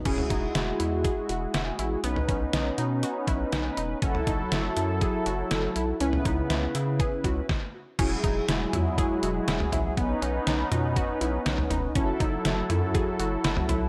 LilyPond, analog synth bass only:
\new Staff \with { instrumentName = "Analog synth bass" } { \clef bass \time 4/4 \key e \major \tempo 4 = 121 e,,8 e,,8 e,,8 e,8. r16 e,,8 e,,8 a,,8 | b,,8 b,,8 b,,8 b,8. r16 b,,8 b,,8 e,,8 | fis,,8 fis,,8 fis,,8 fis,8. r16 fis,,8 fis,,8 b,,8 | cis,8 cis,8 cis,8 cis8. r16 cis,8 r4 |
e,,8 e,,8 e,,8 e,8. r16 e,,8 e,,8 a,,8 | b,,8 b,,8 b,,8 b,8. r16 b,,8 b,,8 e,,8 | fis,,8 fis,,8 fis,,8 fis,8. r16 fis,,8 fis,,8 b,,8 | }